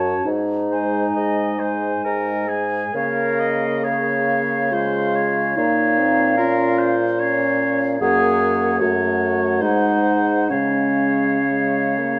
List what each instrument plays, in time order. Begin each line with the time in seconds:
Already playing: bassoon F#2, french horn C#4, clarinet F#4, oboe C#5, flute A5
0.25 bassoon G#2, clarinet D#4
0.71 french horn G#3, oboe C5, flute G#5
1.15 bassoon G#2, oboe D#5
1.59 french horn G#3, oboe C5, flute G#5
2.04 bassoon G#2, oboe A#4
2.49 french horn G#3, oboe G#4, flute G#5
2.93 bassoon C#3, french horn A#3, clarinet A#4, oboe C#5, flute F5
3.40 oboe D#5
3.84 clarinet G#4, oboe C#5, flute F5
4.72 french horn G#3, clarinet F4, oboe C5, flute F5
5.15 oboe C#5
5.56 bassoon A#2, french horn A#3, clarinet D#4, oboe C#5, flute F5
5.98 french horn C4
6.37 french horn C#4, clarinet F4, oboe A#4
6.79 oboe C5
7.19 french horn C#4, oboe C#5, flute F5
8.00 bassoon F#2, french horn A#3, clarinet G#4, oboe C#5, flute F#5
8.80 bassoon F#2, french horn A3, clarinet F#4, oboe C#5, flute F#5
9.61 bassoon G#2, french horn G#3, clarinet D#4, oboe C5, flute F#5
10.50 bassoon C#3, french horn G#3, clarinet C#4, oboe C#5, flute F5
11.50 french horn G#3
11.98 french horn A#3